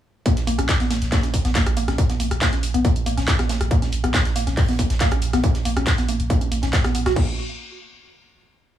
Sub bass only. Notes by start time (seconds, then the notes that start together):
0.47 A#1
0.59 A#1
0.80 A#1
0.90 A#1
1.02 A#1
1.34 A#1
1.45 A#1
1.66 A#1
1.77 A#1
1.88 A#1
2.20 A#1
2.31 A#1
2.53 A#1
2.63 A#1
2.74 A#1
3.06 A#1
3.18 A#1
3.39 A#1
3.49 A#1
3.61 A#1
3.93 A#1
4.04 A#1
4.25 A#1
4.36 A#1
4.47 A#1
4.79 A#1
4.90 A#1
5.12 A#1
5.22 A#1
5.33 A#1
5.65 A#1
5.77 A#1
5.98 A#1
6.08 A#1
6.20 A#1
6.52 A#1
6.63 A#1
6.84 A#1
6.95 A#1
7.06 A#1
7.16 A#1